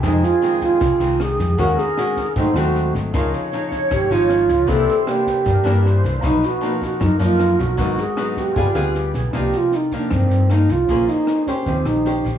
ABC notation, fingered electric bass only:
X:1
M:4/4
L:1/16
Q:1/4=155
K:Ablyd
V:1 name="Fingered electric bass" clef=bass
F,,2 z6 C,, z C,,4 F,,2 | E,,2 z6 A,,, z E,,4 A,,,2 | _D,,2 z6 A,,, z A,,,4 D,,2 | C,,2 z6 G,, z G,,4 C,,2 |
=B,,,2 z6 ^F,, z F,,4 B,,,2 | A,,,2 z6 G,,, z D,,4 =B,,,2 | [K:Cm] C,,2 z6 G,,2 G,,4 C,,2 | B,,,2 z6 E,,2 B,,,4 B,,,2 |]